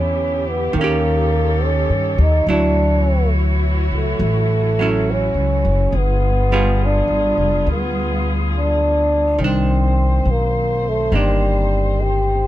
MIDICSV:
0, 0, Header, 1, 5, 480
1, 0, Start_track
1, 0, Tempo, 864553
1, 1374, Time_signature, 4, 2, 24, 8
1, 6924, End_track
2, 0, Start_track
2, 0, Title_t, "Cello section"
2, 0, Program_c, 0, 48
2, 0, Note_on_c, 0, 50, 57
2, 0, Note_on_c, 0, 59, 61
2, 0, Note_on_c, 0, 64, 59
2, 0, Note_on_c, 0, 67, 67
2, 406, Note_off_c, 0, 50, 0
2, 407, Note_off_c, 0, 59, 0
2, 407, Note_off_c, 0, 64, 0
2, 417, Note_on_c, 0, 69, 72
2, 418, Note_on_c, 0, 51, 71
2, 421, Note_on_c, 0, 73, 61
2, 1358, Note_off_c, 0, 67, 0
2, 1365, Note_off_c, 0, 51, 0
2, 1365, Note_off_c, 0, 69, 0
2, 1386, Note_on_c, 0, 52, 58
2, 1386, Note_on_c, 0, 64, 59
2, 1388, Note_on_c, 0, 66, 75
2, 3273, Note_off_c, 0, 73, 0
2, 3279, Note_off_c, 0, 64, 0
2, 3280, Note_off_c, 0, 52, 0
2, 3281, Note_off_c, 0, 66, 0
2, 3296, Note_on_c, 0, 65, 64
2, 3297, Note_on_c, 0, 55, 67
2, 3298, Note_on_c, 0, 59, 55
2, 3300, Note_on_c, 0, 68, 64
2, 5196, Note_off_c, 0, 65, 0
2, 5197, Note_off_c, 0, 55, 0
2, 5197, Note_off_c, 0, 59, 0
2, 5198, Note_off_c, 0, 68, 0
2, 5202, Note_on_c, 0, 72, 62
2, 5205, Note_on_c, 0, 60, 51
2, 6924, Note_off_c, 0, 60, 0
2, 6924, Note_off_c, 0, 72, 0
2, 6924, End_track
3, 0, Start_track
3, 0, Title_t, "Hollow-body jazz guitar"
3, 0, Program_c, 1, 26
3, 0, Note_on_c, 1, 52, 44
3, 0, Note_on_c, 1, 59, 46
3, 0, Note_on_c, 1, 67, 48
3, 404, Note_off_c, 1, 52, 0
3, 406, Note_on_c, 1, 51, 52
3, 419, Note_off_c, 1, 59, 0
3, 428, Note_off_c, 1, 67, 0
3, 450, Note_on_c, 1, 61, 54
3, 465, Note_on_c, 1, 67, 52
3, 1369, Note_off_c, 1, 51, 0
3, 1380, Note_on_c, 1, 54, 48
3, 1384, Note_off_c, 1, 67, 0
3, 1386, Note_on_c, 1, 64, 54
3, 1391, Note_off_c, 1, 61, 0
3, 2654, Note_off_c, 1, 54, 0
3, 2660, Note_on_c, 1, 54, 38
3, 2671, Note_on_c, 1, 61, 44
3, 2672, Note_off_c, 1, 64, 0
3, 2678, Note_on_c, 1, 64, 44
3, 3294, Note_off_c, 1, 54, 0
3, 3299, Note_off_c, 1, 61, 0
3, 3303, Note_off_c, 1, 64, 0
3, 3621, Note_on_c, 1, 55, 44
3, 3624, Note_on_c, 1, 59, 48
3, 3629, Note_on_c, 1, 65, 47
3, 3630, Note_on_c, 1, 68, 46
3, 5209, Note_off_c, 1, 55, 0
3, 5211, Note_on_c, 1, 51, 45
3, 5217, Note_off_c, 1, 59, 0
3, 5220, Note_off_c, 1, 65, 0
3, 5221, Note_off_c, 1, 68, 0
3, 5243, Note_on_c, 1, 62, 51
3, 6168, Note_off_c, 1, 51, 0
3, 6175, Note_on_c, 1, 51, 38
3, 6182, Note_on_c, 1, 58, 31
3, 6186, Note_off_c, 1, 62, 0
3, 6193, Note_on_c, 1, 62, 42
3, 6924, Note_off_c, 1, 51, 0
3, 6924, Note_off_c, 1, 58, 0
3, 6924, Note_off_c, 1, 62, 0
3, 6924, End_track
4, 0, Start_track
4, 0, Title_t, "Trombone"
4, 0, Program_c, 2, 57
4, 0, Note_on_c, 2, 61, 74
4, 275, Note_on_c, 2, 59, 74
4, 283, Note_off_c, 2, 61, 0
4, 423, Note_off_c, 2, 59, 0
4, 427, Note_on_c, 2, 58, 83
4, 913, Note_on_c, 2, 61, 70
4, 922, Note_off_c, 2, 58, 0
4, 1228, Note_on_c, 2, 63, 75
4, 1236, Note_off_c, 2, 61, 0
4, 1379, Note_off_c, 2, 63, 0
4, 1387, Note_on_c, 2, 62, 85
4, 1839, Note_off_c, 2, 62, 0
4, 2204, Note_on_c, 2, 57, 75
4, 2836, Note_on_c, 2, 61, 80
4, 2844, Note_off_c, 2, 57, 0
4, 3320, Note_on_c, 2, 59, 89
4, 3328, Note_off_c, 2, 61, 0
4, 3805, Note_on_c, 2, 62, 81
4, 3813, Note_off_c, 2, 59, 0
4, 4268, Note_off_c, 2, 62, 0
4, 4281, Note_on_c, 2, 59, 69
4, 4627, Note_off_c, 2, 59, 0
4, 4758, Note_on_c, 2, 62, 79
4, 5239, Note_on_c, 2, 60, 88
4, 5248, Note_off_c, 2, 62, 0
4, 5724, Note_on_c, 2, 58, 77
4, 5732, Note_off_c, 2, 60, 0
4, 6044, Note_on_c, 2, 57, 72
4, 6052, Note_off_c, 2, 58, 0
4, 6197, Note_on_c, 2, 55, 85
4, 6205, Note_off_c, 2, 57, 0
4, 6671, Note_on_c, 2, 67, 83
4, 6680, Note_off_c, 2, 55, 0
4, 6924, Note_off_c, 2, 67, 0
4, 6924, End_track
5, 0, Start_track
5, 0, Title_t, "Upright bass"
5, 0, Program_c, 3, 32
5, 0, Note_on_c, 3, 40, 66
5, 392, Note_off_c, 3, 40, 0
5, 411, Note_on_c, 3, 39, 68
5, 1029, Note_off_c, 3, 39, 0
5, 1053, Note_on_c, 3, 43, 46
5, 1202, Note_off_c, 3, 43, 0
5, 1213, Note_on_c, 3, 39, 73
5, 1362, Note_off_c, 3, 39, 0
5, 1369, Note_on_c, 3, 38, 76
5, 2154, Note_off_c, 3, 38, 0
5, 2173, Note_on_c, 3, 37, 47
5, 2321, Note_off_c, 3, 37, 0
5, 2329, Note_on_c, 3, 33, 75
5, 2948, Note_off_c, 3, 33, 0
5, 2966, Note_on_c, 3, 37, 47
5, 3118, Note_off_c, 3, 37, 0
5, 3136, Note_on_c, 3, 30, 65
5, 3283, Note_off_c, 3, 30, 0
5, 3289, Note_on_c, 3, 31, 75
5, 3908, Note_off_c, 3, 31, 0
5, 3929, Note_on_c, 3, 32, 53
5, 4079, Note_off_c, 3, 32, 0
5, 4095, Note_on_c, 3, 29, 54
5, 4242, Note_off_c, 3, 29, 0
5, 4256, Note_on_c, 3, 38, 67
5, 5194, Note_off_c, 3, 38, 0
5, 5212, Note_on_c, 3, 36, 70
5, 5671, Note_off_c, 3, 36, 0
5, 5693, Note_on_c, 3, 35, 62
5, 6152, Note_off_c, 3, 35, 0
5, 6172, Note_on_c, 3, 31, 67
5, 6924, Note_off_c, 3, 31, 0
5, 6924, End_track
0, 0, End_of_file